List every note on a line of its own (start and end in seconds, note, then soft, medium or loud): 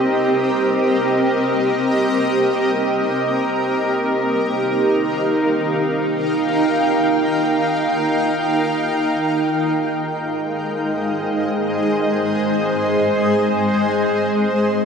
0.00 5.67 C4 medium
0.00 5.66 G4 medium
0.00 11.89 A#4 medium
0.00 5.65 D#5 medium
3.17 11.90 D#4 medium
4.20 10.82 F5 medium
4.49 11.11 G5 medium
9.39 14.85 G#3 medium
9.93 14.85 D#5 medium
10.27 14.85 G#4 medium
10.27 14.85 C5 medium